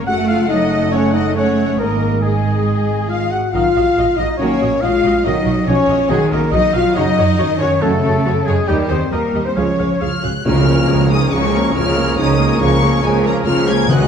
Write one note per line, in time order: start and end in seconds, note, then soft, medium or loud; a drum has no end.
0.07 1.76 F#1 medium
0.07 1.76 C#3 medium
0.07 1.76 A3 medium
0.07 0.50 A3 medium
0.07 0.27 F#4 loud
0.07 0.89 A4 medium
0.07 0.30 F#5 loud
0.07 0.27 F#5 medium
0.07 0.17 F#5 medium
0.07 0.27 F#5 medium
0.07 0.89 F#5 medium
0.28 0.49 F4 loud
0.28 0.49 F5 medium
0.28 0.38 F5 medium
0.28 0.52 F5 medium
0.28 0.37 F5 medium
0.28 0.50 F5 medium
0.49 0.93 F#3 medium
0.49 0.91 D#4 loud
0.49 0.91 D#5 medium
0.49 0.92 D#5 medium
0.49 0.91 D#5 medium
0.49 0.93 D#5 medium
0.91 1.78 A3 medium
0.91 1.14 C#4 loud
0.91 1.34 A4 medium
0.91 1.13 C#5 medium
0.91 1.14 C#5 medium
0.91 1.18 C#5 medium
0.91 1.34 F#5 medium
1.13 1.35 D#4 medium
1.13 1.35 D#5 medium
1.13 1.36 D#5 medium
1.13 1.24 D#5 medium
1.13 1.36 D#5 medium
1.13 1.37 D#5 medium
1.35 1.79 C#4 medium
1.35 1.78 A4 medium
1.35 1.78 C#5 medium
1.35 1.82 C#5 medium
1.35 1.79 C#5 medium
1.35 1.80 C#5 medium
1.35 1.78 F#5 medium
1.77 3.31 G#1 medium
1.77 3.29 D#3 medium
1.77 3.29 G#3 medium
1.77 3.33 G#3 medium
1.77 2.22 A#3 medium
1.77 2.22 G#4 medium
1.77 2.24 A#4 medium
1.77 2.26 A#4 medium
1.77 2.22 A#4 medium
1.77 2.25 A#4 medium
1.77 2.23 A#4 medium
1.77 2.22 D#5 medium
2.22 3.09 G#3 medium
2.22 3.09 G#4 medium
2.22 3.31 G#4 medium
2.22 3.08 G#4 medium
2.22 3.09 G#4 medium
2.22 3.11 G#4 medium
2.22 3.31 D#5 medium
3.09 3.31 F4 medium
3.09 3.32 F5 medium
3.09 3.33 F5 medium
3.09 3.20 F5 medium
3.09 3.33 F5 medium
3.09 3.32 F5 medium
3.31 3.53 F#4 medium
3.31 3.52 F#5 medium
3.31 3.53 F#5 medium
3.31 3.54 F#5 medium
3.31 3.40 F#5 medium
3.53 3.62 A#1 medium
3.53 3.68 D#3 medium
3.53 3.69 F#3 medium
3.53 4.16 F4 medium
3.53 3.62 F#4 medium
3.53 3.63 D#5 medium
3.53 4.17 F5 medium
3.53 4.16 F5 medium
3.53 4.17 F5 medium
3.76 3.84 A#1 medium
3.76 3.84 F#4 medium
3.76 3.84 D#5 medium
3.97 4.06 A#1 medium
3.97 4.06 F#4 medium
3.97 4.05 D#5 medium
4.17 4.27 A#1 medium
4.17 4.39 D#4 medium
4.17 4.27 F#4 medium
4.17 4.37 D#5 medium
4.17 4.38 D#5 medium
4.17 4.27 D#5 medium
4.17 4.40 D#5 medium
4.17 4.28 D#5 medium
4.17 4.27 D#5 medium
4.37 4.47 A#1 medium
4.37 4.55 D#3 medium
4.37 4.55 F#3 medium
4.37 4.80 A#3 medium
4.37 4.81 C#4 loud
4.37 4.48 F#4 medium
4.37 4.82 C#5 medium
4.37 4.81 C#5 medium
4.37 4.82 C#5 medium
4.37 4.83 C#5 medium
4.37 4.48 D#5 medium
4.61 4.69 A#1 medium
4.61 4.69 F#4 soft
4.61 4.69 D#5 medium
4.81 4.90 A#1 medium
4.81 5.25 G#3 medium
4.81 5.25 F4 loud
4.81 4.91 F#4 medium
4.81 4.91 D#5 medium
4.81 5.25 F5 medium
4.81 5.24 F5 medium
4.81 5.25 F5 medium
4.81 5.28 F5 medium
4.81 5.26 F5 medium
5.04 5.12 A#1 medium
5.04 5.13 F#4 medium
5.04 5.13 D#5 medium
5.24 5.33 B1 medium
5.24 5.40 D#3 medium
5.24 5.40 F#3 medium
5.24 5.67 F#3 medium
5.24 5.68 D#4 medium
5.24 5.33 F#4 medium
5.24 5.67 D#5 medium
5.24 5.69 D#5 medium
5.24 5.33 D#5 medium
5.24 5.68 D#5 medium
5.24 5.69 D#5 medium
5.45 5.54 B1 medium
5.45 5.53 F#4 medium
5.45 5.54 D#5 medium
5.67 5.75 B1 medium
5.67 6.11 F3 medium
5.67 6.09 C#4 loud
5.67 5.76 F#4 medium
5.67 6.09 C#5 medium
5.67 6.10 C#5 medium
5.67 6.10 C#5 loud
5.67 5.76 D#5 medium
5.88 5.96 B1 medium
5.88 5.97 F#4 medium
5.88 5.98 D#5 medium
6.09 6.18 B1 medium
6.09 6.25 D#3 medium
6.09 6.54 D#3 medium
6.09 6.25 F#3 medium
6.09 6.32 G#3 loud
6.09 6.18 F#4 medium
6.09 6.31 G#4 medium
6.09 6.33 G#4 medium
6.09 6.20 G#4 loud
6.09 6.32 G#4 medium
6.09 6.17 D#5 medium
6.31 6.40 B1 medium
6.31 6.54 A#3 loud
6.31 6.39 F#4 medium
6.31 6.53 A#4 medium
6.31 6.51 A#4 medium
6.31 6.52 A#4 medium
6.31 6.38 A#4 medium
6.31 6.39 D#5 medium
6.52 6.60 B1 medium
6.52 7.39 F#3 medium
6.52 6.74 D#4 loud
6.52 6.60 F#4 medium
6.52 6.75 D#5 loud
6.52 6.74 D#5 medium
6.52 6.61 D#5 medium
6.52 6.73 D#5 medium
6.52 6.75 D#5 loud
6.73 6.82 B1 medium
6.73 6.96 F4 loud
6.73 6.82 F#4 medium
6.73 6.82 D#5 medium
6.73 6.95 F5 medium
6.73 6.94 F5 medium
6.73 6.96 F5 medium
6.73 6.96 F5 loud
6.73 6.82 F5 medium
6.95 7.03 F#2 medium
6.95 7.11 C#3 medium
6.95 7.11 F#3 medium
6.95 7.60 D#4 loud
6.95 7.04 F#4 medium
6.95 7.04 C#5 medium
6.95 7.59 D#5 medium
6.95 7.60 D#5 loud
6.95 7.59 D#5 loud
6.95 7.59 D#5 medium
6.95 7.33 D#5 loud
7.17 7.25 F#2 medium
7.17 7.25 F#4 medium
7.17 7.25 C#5 medium
7.38 7.47 F#2 medium
7.38 7.82 D#3 medium
7.38 7.46 F#4 medium
7.38 7.46 C#5 medium
7.57 7.68 F#2 medium
7.57 7.81 C#4 loud
7.57 7.68 F#4 medium
7.57 7.84 C#5 medium
7.57 7.68 C#5 medium
7.57 7.82 C#5 medium
7.57 7.80 C#5 medium
7.57 7.69 C#5 medium
7.81 7.90 F#2 medium
7.81 7.97 C#3 medium
7.81 8.68 C#3 medium
7.81 7.97 F#3 medium
7.81 8.29 A3 loud
7.81 7.89 F#4 medium
7.81 8.48 A4 medium
7.81 8.45 A4 medium
7.81 8.47 A4 medium
7.81 8.46 A4 medium
7.81 8.47 A4 medium
7.81 7.89 C#5 medium
8.04 8.12 F#2 medium
8.04 8.12 F#4 medium
8.04 8.12 C#5 medium
8.25 8.33 F#2 medium
8.25 8.34 F#4 medium
8.25 8.34 C#5 medium
8.46 8.55 F#2 medium
8.46 8.68 G#3 medium
8.46 8.55 F#4 medium
8.46 8.67 G#4 medium
8.46 8.68 G#4 medium
8.46 8.54 G#4 medium
8.46 8.69 G#4 medium
8.46 8.56 G#4 medium
8.46 8.55 C#5 medium
8.67 8.77 D#2 medium
8.67 8.83 D#3 medium
8.67 9.12 D#3 medium
8.67 8.83 G3 medium
8.67 8.90 G3 loud
8.67 8.91 G4 medium
8.67 8.75 G4 medium
8.67 8.78 G4 medium
8.67 8.90 G4 medium
8.67 8.77 G4 medium
8.67 8.90 G4 medium
8.67 8.77 D#5 medium
8.88 8.98 D#2 medium
8.88 9.12 C4 loud
8.88 8.99 G4 medium
8.88 8.96 C5 medium
8.88 9.11 C5 medium
8.88 9.12 C5 medium
8.88 9.01 C5 medium
8.88 8.98 D#5 medium
9.11 9.19 D#2 medium
9.11 9.56 G3 medium
9.11 9.46 A#3 medium
9.11 9.20 G4 medium
9.11 9.44 A#4 medium
9.11 9.48 A#4 medium
9.11 9.45 A#4 medium
9.11 9.44 A#4 medium
9.11 9.47 A#4 medium
9.11 9.21 D#5 medium
9.33 9.41 D#2 medium
9.33 9.43 G4 medium
9.33 9.42 D#5 medium
9.45 9.51 C4 medium
9.45 9.50 C5 medium
9.45 9.56 C5 medium
9.45 9.59 C5 medium
9.45 9.58 C5 medium
9.45 9.51 C5 medium
9.56 9.64 C#2 medium
9.56 9.72 F3 medium
9.56 10.24 F3 medium
9.56 9.72 G#3 medium
9.56 10.01 C#4 medium
9.56 9.64 G#4 medium
9.56 10.23 C#5 medium
9.56 10.22 C#5 medium
9.56 10.24 C#5 medium
9.56 10.01 C#5 medium
9.56 9.64 F5 medium
9.78 9.87 C#2 medium
9.78 9.86 G#4 soft
9.78 9.86 F5 medium
10.01 10.09 C#2 medium
10.01 10.23 F4 medium
10.01 10.09 G#4 medium
10.01 10.09 F5 medium
10.01 10.22 F6 medium
10.23 10.31 C#2 medium
10.23 10.46 F#4 medium
10.23 10.31 G#4 medium
10.23 10.31 F5 medium
10.23 10.45 F#6 medium
10.45 10.84 C#2 medium
10.45 10.84 C#3 loud
10.45 11.28 F3 medium
10.45 10.66 G#3 medium
10.45 11.28 A#3 medium
10.45 11.08 F4 loud
10.45 10.65 G#4 medium
10.45 13.86 G#4 medium
10.45 10.66 A#4 medium
10.45 10.65 C#5 medium
10.45 13.86 C#5 medium
10.45 13.86 A#5 medium
10.45 11.09 F6 loud
10.45 tam-tam medium
10.66 10.88 A#3 medium
10.66 10.89 G#4 medium
10.66 10.88 A#4 medium
10.88 11.27 C#2 medium
10.88 11.27 C#3 medium
10.88 11.10 G#3 medium
10.88 11.10 G#4 medium
10.88 11.10 A#4 medium
10.88 11.11 C#5 medium
11.10 11.32 A#3 medium
11.10 11.32 D#4 medium
11.10 11.32 G#4 medium
11.10 11.32 A#4 medium
11.10 11.31 A#4 medium
11.10 11.31 D#6 loud
11.31 11.70 C#2 medium
11.31 11.70 C#3 loud
11.31 11.74 F3 medium
11.31 11.52 G#3 medium
11.31 11.74 A#3 medium
11.31 11.75 C#4 loud
11.31 11.53 G#4 medium
11.31 11.52 A#4 medium
11.31 11.52 C#5 medium
11.31 11.75 C#6 loud
11.54 11.75 A#3 medium
11.54 11.76 G#4 medium
11.54 11.75 A#4 medium
11.54 11.74 A#4 medium
11.75 12.13 C#2 medium
11.75 12.13 C#3 medium
11.75 12.59 F3 medium
11.75 11.96 G#3 medium
11.75 12.59 A#3 medium
11.75 12.18 F4 loud
11.75 11.97 G#4 medium
11.75 11.95 A#4 medium
11.75 11.97 C#5 medium
11.75 12.18 F6 loud
11.97 12.18 A#3 medium
11.97 12.18 G#4 medium
11.97 12.16 A#4 medium
11.97 12.18 A#4 medium
12.17 12.56 C#2 loud
12.17 12.56 C#3 loud
12.17 12.38 G#3 medium
12.17 12.60 D#4 loud
12.17 12.38 G#4 medium
12.17 12.38 A#4 medium
12.17 12.38 C#5 medium
12.17 12.60 D#6 loud
12.39 12.61 A#3 medium
12.39 12.60 G#4 medium
12.39 12.60 A#4 medium
12.39 12.61 A#4 medium
12.60 12.99 C#2 medium
12.60 12.99 C#3 loud
12.60 13.01 F3 medium
12.60 12.83 G#3 medium
12.60 13.02 A#3 medium
12.60 13.03 C#4 loud
12.60 12.83 G#4 medium
12.60 12.81 A#4 medium
12.60 12.82 C#5 medium
12.60 13.03 C#6 loud
12.82 13.05 A#3 medium
12.82 13.04 G#4 medium
12.82 13.02 A#4 medium
12.82 13.05 A#4 medium
13.02 13.42 C#2 medium
13.02 13.42 C#3 loud
13.02 13.45 F3 medium
13.02 13.24 G#3 loud
13.02 13.24 G#3 medium
13.02 13.45 A#3 loud
13.02 13.24 G#4 medium
13.02 13.24 A#4 medium
13.02 13.24 C#5 medium
13.02 13.25 G#5 loud
13.25 13.35 A#3 loud
13.25 13.47 A#3 medium
13.25 13.47 G#4 medium
13.25 13.45 A#4 medium
13.25 13.47 A#4 medium
13.25 13.34 A#5 loud
13.46 13.85 C#2 medium
13.46 13.85 C#3 loud
13.46 13.88 F3 medium
13.46 13.69 G#3 medium
13.46 13.88 A#3 medium
13.46 13.68 F4 loud
13.46 13.69 G#4 medium
13.46 13.67 A#4 medium
13.46 13.68 C#5 medium
13.46 13.67 F6 loud
13.68 13.90 A#3 medium
13.68 13.90 G#4 loud
13.68 13.90 G#4 medium
13.68 13.90 A#4 medium
13.68 13.90 G#6 loud
13.89 14.08 C#2 medium
13.89 14.08 C#3 loud
13.89 14.08 D#3 medium
13.89 14.08 F#3 medium
13.89 14.08 G#3 medium
13.89 14.08 F#4 medium
13.89 14.08 F#4 loud
13.89 14.08 G#4 medium
13.89 14.08 B4 loud
13.89 14.08 D#5 medium
13.89 14.08 G#5 loud
13.89 14.08 F#6 loud